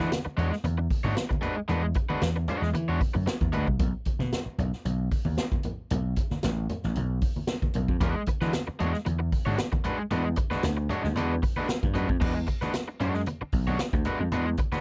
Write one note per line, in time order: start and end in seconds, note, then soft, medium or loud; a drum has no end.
0.00 0.10 G#3 medium
0.00 0.10 D4 medium
0.00 0.11 F#4 medium
0.00 0.11 B4 medium
0.00 high conga medium
0.11 muted overdriven electric guitar stroke soft
0.11 snare medium
0.11 closed hi-hat medium
0.11 muted conga soft
0.11 high conga medium
0.25 muted overdriven electric guitar stroke soft
0.25 muted slap bass stroke soft
0.37 0.50 E2 medium
0.37 0.54 G#3 medium
0.37 0.51 D4 medium
0.37 0.51 F#4 medium
0.37 0.51 C#5 loud
0.37 closed hi-hat medium
0.37 muted conga soft
0.37 low conga medium
0.51 muted overdriven electric guitar stroke medium
0.51 snare soft
0.64 0.87 E2 loud
0.64 muted overdriven electric guitar stroke soft
0.64 closed hi-hat medium
0.64 muted conga soft
0.64 high conga medium
0.78 muted overdriven electric guitar stroke soft
0.90 kick medium
0.90 open hi-hat medium
0.90 muted conga soft
1.04 1.15 G#2 medium
1.04 1.15 G#3 medium
1.04 1.15 D4 medium
1.04 1.16 F#4 medium
1.04 1.17 C#5 loud
1.04 high conga medium
1.16 muted overdriven electric guitar stroke soft
1.16 snare loud
1.16 closed hi-hat medium
1.16 muted conga soft
1.29 muted overdriven electric guitar stroke soft
1.29 kick medium
1.29 high conga medium
1.41 1.58 G#3 medium
1.41 1.56 D4 medium
1.41 1.56 F#4 medium
1.41 1.55 B4 medium
1.41 closed hi-hat medium
1.41 muted conga soft
1.41 low conga medium
1.56 muted overdriven electric guitar stroke soft
1.68 1.92 E2 medium
1.68 1.85 G#3 medium
1.68 1.83 D4 medium
1.68 1.83 F#4 loud
1.68 1.82 B4 medium
1.68 closed hi-hat medium
1.68 low conga medium
1.83 muted overdriven electric guitar stroke soft
1.94 muted overdriven electric guitar stroke soft
1.94 kick loud
1.94 closed hi-hat medium
2.09 2.21 G#3 medium
2.09 2.22 D4 medium
2.09 2.21 F#4 medium
2.09 2.21 B4 medium
2.09 muted slap bass stroke medium
2.09 high conga medium
2.22 2.45 E2 medium
2.22 muted overdriven electric guitar stroke soft
2.22 snare loud
2.22 closed hi-hat medium
2.22 muted conga soft
2.22 high conga medium
2.36 muted overdriven electric guitar stroke soft
2.48 2.69 G#3 medium
2.48 2.62 D4 medium
2.48 2.62 F#4 loud
2.48 2.62 C#5 medium
2.48 closed hi-hat medium
2.48 muted conga soft
2.48 low conga medium
2.62 2.73 E2 loud
2.62 muted overdriven electric guitar stroke soft
2.62 snare soft
2.74 2.86 E3 loud
2.74 muted overdriven electric guitar stroke soft
2.74 closed hi-hat medium
2.74 muted conga soft
2.74 high conga medium
2.88 2.99 E2 medium
2.88 2.99 G#3 medium
2.88 2.99 D4 medium
2.88 3.00 F#4 medium
2.88 3.01 C#5 medium
3.00 muted overdriven electric guitar stroke soft
3.00 kick loud
3.00 open hi-hat medium
3.14 3.26 F#2 loud
3.14 muted overdriven electric guitar stroke medium
3.14 high conga medium
3.27 muted overdriven electric guitar stroke soft
3.27 snare loud
3.27 closed hi-hat medium
3.27 muted conga soft
3.41 3.52 E2 medium
3.41 kick medium
3.41 high conga medium
3.53 3.67 D2 loud
3.53 3.66 G#3 medium
3.53 3.66 D4 medium
3.53 3.66 F#4 medium
3.53 3.66 B4 medium
3.53 closed hi-hat medium
3.53 muted conga soft
3.53 low conga medium
3.67 3.78 C2 medium
3.67 muted overdriven electric guitar stroke soft
3.67 kick medium
3.79 3.92 B1 medium
3.79 kick loud
3.79 closed hi-hat medium
3.79 muted conga soft
3.79 low conga medium
4.05 muted slap bass stroke soft
4.05 kick loud
4.05 closed hi-hat medium
4.05 muted conga soft
4.19 4.30 B2 loud
4.19 snare soft
4.19 high conga medium
4.32 snare medium
4.32 closed hi-hat medium
4.32 high conga medium
4.46 muted slap bass stroke soft
4.58 4.71 B1 medium
4.58 closed hi-hat medium
4.58 low conga medium
4.73 snare soft
4.85 5.08 B1 medium
4.85 closed hi-hat medium
4.85 high conga medium
5.11 kick medium
5.11 open hi-hat medium
5.11 muted conga soft
5.25 5.36 D#2 medium
5.25 high conga medium
5.38 snare loud
5.38 closed hi-hat medium
5.38 muted conga soft
5.52 kick loud
5.52 high conga medium
5.63 closed hi-hat medium
5.63 low conga medium
5.90 6.13 B1 medium
5.90 closed hi-hat loud
5.90 muted conga soft
5.90 low conga medium
6.16 kick medium
6.16 closed hi-hat medium
6.16 muted conga soft
6.30 muted slap bass stroke soft
6.30 snare soft
6.30 high conga medium
6.43 6.66 A1 loud
6.43 snare medium
6.43 closed hi-hat medium
6.43 high conga medium
6.70 closed hi-hat medium
6.70 muted conga soft
6.70 low conga medium
6.83 6.95 A1 medium
6.83 snare soft
6.96 7.19 B1 loud
6.96 closed hi-hat medium
6.96 muted conga soft
6.96 high conga medium
7.21 kick medium
7.21 open hi-hat medium
7.21 muted conga soft
7.36 high conga medium
7.47 snare loud
7.47 closed hi-hat medium
7.47 muted conga soft
7.62 kick loud
7.62 high conga medium
7.74 7.87 B1 medium
7.74 closed hi-hat medium
7.74 muted conga soft
7.74 low conga medium
7.88 7.99 F2 loud
7.88 kick medium
8.01 8.13 E2 medium
8.01 8.21 G#3 medium
8.01 8.15 D4 medium
8.01 8.14 F#4 medium
8.01 8.14 B4 medium
8.01 kick loud
8.01 closed hi-hat loud
8.01 muted conga soft
8.01 low conga medium
8.15 muted overdriven electric guitar stroke soft
8.26 muted slap bass stroke soft
8.26 muted overdriven electric guitar stroke soft
8.26 kick medium
8.26 closed hi-hat medium
8.26 muted conga soft
8.41 8.52 E3 loud
8.41 8.52 G#3 medium
8.41 8.52 D4 medium
8.41 8.53 F#4 medium
8.41 8.53 B4 medium
8.41 snare soft
8.41 high conga medium
8.53 muted overdriven electric guitar stroke soft
8.53 snare loud
8.53 closed hi-hat medium
8.53 high conga medium
8.67 muted overdriven electric guitar stroke soft
8.67 muted slap bass stroke soft
8.79 8.92 E2 medium
8.79 8.96 G#3 medium
8.79 8.93 D4 medium
8.79 8.92 F#4 medium
8.79 8.92 C#5 medium
8.79 closed hi-hat medium
8.79 low conga medium
8.93 muted overdriven electric guitar stroke soft
8.93 snare soft
9.05 9.29 E2 medium
9.05 muted overdriven electric guitar stroke soft
9.05 closed hi-hat medium
9.05 muted conga soft
9.05 high conga medium
9.19 muted overdriven electric guitar stroke soft
9.32 kick loud
9.32 open hi-hat medium
9.46 9.57 G#2 medium
9.46 9.57 G#3 medium
9.46 9.57 D4 medium
9.46 9.58 F#4 medium
9.46 9.59 C#5 medium
9.46 high conga medium
9.58 muted overdriven electric guitar stroke soft
9.58 snare loud
9.58 closed hi-hat medium
9.58 muted conga soft
9.72 muted overdriven electric guitar stroke soft
9.72 kick loud
9.72 high conga medium
9.84 10.01 G#3 medium
9.84 9.98 D4 medium
9.84 9.98 F#4 medium
9.84 9.97 B4 loud
9.84 closed hi-hat medium
9.84 low conga medium
9.98 muted overdriven electric guitar stroke soft
10.11 10.34 E2 medium
10.11 10.27 G#3 medium
10.11 10.25 D4 medium
10.11 10.25 F#4 medium
10.11 10.24 B4 medium
10.11 closed hi-hat medium
10.11 muted conga soft
10.11 low conga medium
10.25 muted overdriven electric guitar stroke soft
10.36 muted overdriven electric guitar stroke soft
10.36 kick medium
10.36 closed hi-hat medium
10.36 muted conga soft
10.50 10.62 G#3 medium
10.50 10.63 D4 medium
10.50 10.63 F#4 medium
10.50 10.63 B4 medium
10.50 muted slap bass stroke soft
10.50 snare soft
10.50 high conga medium
10.63 10.86 D2 medium
10.63 muted overdriven electric guitar stroke soft
10.63 snare medium
10.63 closed hi-hat medium
10.63 muted conga soft
10.63 high conga medium
10.77 muted overdriven electric guitar stroke soft
10.90 11.06 G#3 medium
10.90 11.03 D4 medium
10.90 11.02 F#4 medium
10.90 11.03 C#5 medium
10.90 closed hi-hat medium
10.90 low conga medium
11.03 11.15 D2 medium
11.03 muted overdriven electric guitar stroke soft
11.03 snare soft
11.16 11.39 E2 medium
11.16 11.33 G#3 medium
11.16 11.33 D4 medium
11.16 11.33 F#4 medium
11.16 11.33 B4 medium
11.16 closed hi-hat medium
11.16 muted conga soft
11.16 high conga medium
11.43 muted overdriven electric guitar stroke soft
11.43 kick medium
11.43 open hi-hat medium
11.43 muted conga soft
11.56 11.67 G#3 medium
11.56 11.68 D4 medium
11.56 11.68 F#4 medium
11.56 11.68 B4 medium
11.56 high conga medium
11.69 muted overdriven electric guitar stroke soft
11.69 snare loud
11.69 closed hi-hat medium
11.69 muted conga soft
11.83 11.94 G2 medium
11.83 kick medium
11.83 high conga medium
11.94 12.07 F#2 loud
11.94 12.08 G#3 medium
11.94 12.08 D4 medium
11.94 12.08 F#4 medium
11.94 12.07 B4 medium
11.94 closed hi-hat medium
11.94 low conga medium
12.09 12.20 F2 medium
12.09 muted overdriven electric guitar stroke soft
12.09 kick medium
12.20 12.44 E2 medium
12.20 12.37 G#3 medium
12.20 12.35 D4 medium
12.20 12.34 F#4 medium
12.20 12.34 B4 medium
12.20 kick loud
12.20 crash loud
12.20 muted conga soft
12.20 low conga medium
12.35 muted overdriven electric guitar stroke soft
12.47 muted overdriven electric guitar stroke soft
12.47 kick medium
12.47 closed hi-hat medium
12.47 muted conga soft
12.61 12.73 G#3 medium
12.61 12.73 D4 medium
12.61 12.74 F#4 medium
12.61 12.73 B4 medium
12.61 muted slap bass stroke medium
12.61 snare soft
12.61 high conga medium
12.74 muted overdriven electric guitar stroke soft
12.74 snare loud
12.74 closed hi-hat loud
12.74 muted conga soft
12.88 muted overdriven electric guitar stroke soft
13.00 13.24 F#2 medium
13.00 13.21 G#3 medium
13.00 13.14 D4 medium
13.00 13.14 F#4 medium
13.00 13.14 C#5 medium
13.00 closed hi-hat medium
13.00 muted conga soft
13.00 low conga medium
13.14 muted overdriven electric guitar stroke soft
13.14 snare soft
13.26 muted overdriven electric guitar stroke soft
13.26 closed hi-hat medium
13.26 muted conga soft
13.26 high conga medium
13.41 muted overdriven electric guitar stroke soft
13.41 muted slap bass stroke soft
13.52 13.76 B1 medium
13.52 kick medium
13.52 open hi-hat medium
13.52 muted conga soft
13.67 13.78 G#3 medium
13.67 13.79 D4 medium
13.67 13.79 F#4 medium
13.67 13.80 C#5 medium
13.67 high conga medium
13.79 muted overdriven electric guitar stroke soft
13.79 snare medium
13.79 closed hi-hat medium
13.93 14.04 D2 medium
13.93 muted overdriven electric guitar stroke soft
13.93 kick loud
13.93 high conga medium
14.05 14.22 G#3 medium
14.05 14.20 D4 medium
14.05 14.19 F#4 medium
14.05 14.19 B4 medium
14.05 closed hi-hat medium
14.05 muted conga soft
14.05 low conga medium
14.20 14.31 F2 medium
14.20 muted overdriven electric guitar stroke soft
14.32 14.55 E2 medium
14.32 14.48 G#3 loud
14.32 14.46 D4 loud
14.32 14.46 F#4 loud
14.32 14.45 B4 loud
14.32 closed hi-hat medium
14.32 muted conga soft
14.32 low conga medium
14.46 muted overdriven electric guitar stroke soft
14.57 muted overdriven electric guitar stroke soft
14.57 kick medium
14.57 closed hi-hat medium
14.57 muted conga soft
14.72 14.81 G#3 soft
14.72 14.81 D4 medium
14.72 14.81 F#4 medium
14.72 14.81 B4 medium
14.72 muted slap bass stroke soft
14.72 snare soft
14.72 high conga medium